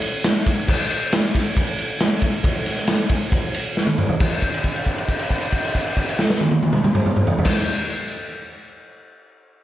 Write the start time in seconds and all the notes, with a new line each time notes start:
0.02 ride
0.24 snare, ride
0.46 kick, ride
0.68 kick, crash
0.90 ride
1.12 snare, ride
1.35 kick, ride
1.57 kick, ride
1.78 ride
2.00 snare, ride
2.22 kick, ride
2.44 kick, ride
2.66 snare, ride
2.77 snare
2.87 snare, ride
3.09 kick, ride
3.32 kick, ride
3.54 ride
3.77 snare
3.87 high tom
3.98 mid tom
4.09 floor tom
4.20 kick, crash
4.42 kick, crash
4.54 crash
4.64 kick, crash
4.76 crash
4.86 kick, crash
4.98 crash
5.09 kick, crash
5.19 crash
5.30 kick, crash
5.42 crash
5.53 kick, crash
5.65 crash
5.75 kick, crash
5.87 crash
5.97 kick, crash
6.09 crash
6.19 snare
6.30 snare
6.41 high tom
6.51 high tom
6.63 high tom
6.73 mid tom
6.84 mid tom
6.95 mid tom
7.06 mid tom
7.16 mid tom
7.27 floor tom
7.39 floor tom
7.45 kick, snare, crash